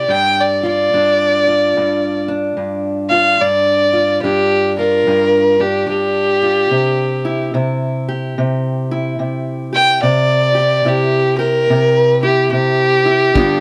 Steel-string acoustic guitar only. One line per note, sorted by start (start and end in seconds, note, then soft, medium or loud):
0.00 0.63 G4 medium
0.08 0.93 G2 medium
0.63 1.47 F4 medium
0.93 1.77 G2 medium
0.93 2.27 D4 medium
1.47 3.10 F4 medium
1.77 2.56 G2 medium
2.28 3.36 D4 medium
2.57 3.39 G2 medium
3.11 3.36 F4 medium
3.41 4.22 G2 medium
3.93 4.75 F4 medium
4.23 5.05 G2 medium
4.23 5.59 D4 medium
4.79 6.41 F4 medium
5.07 5.88 G2 medium
5.60 6.68 D4 medium
5.89 6.70 G2 medium
6.42 6.68 F4 medium
6.71 7.53 C3 medium
7.25 7.54 E4 medium
7.54 8.38 C3 medium
7.54 8.90 E4 medium
8.09 9.72 G4 medium
8.38 9.18 C3 medium
8.91 10.00 E4 medium
9.19 9.99 C3 medium
9.73 10.54 G4 medium
10.03 10.84 C3 medium
10.55 11.38 G4 medium
10.85 11.68 C3 medium
10.85 12.22 E4 medium
11.39 13.37 G4 medium
11.70 12.51 C3 medium
12.23 13.04 E4 medium
12.52 13.31 C3 medium
13.05 13.31 E4 medium
13.34 13.60 G2 medium
13.34 13.60 D3 medium
13.34 13.60 B3 medium
13.34 13.60 D4 medium
13.34 13.60 F4 medium